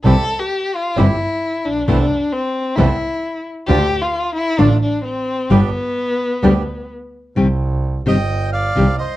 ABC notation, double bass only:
X:1
M:4/4
L:1/8
Q:1/4=131
K:Gmix
V:1 name="Double bass" clef=bass
C,, z3 G,,, z2 _B,,, | C,, z3 C,, z3 | D,, z3 A,,, z3 | G,,, z3 D,, z3 |
[K:Cm] C,,3 G,,,3 C,, z |]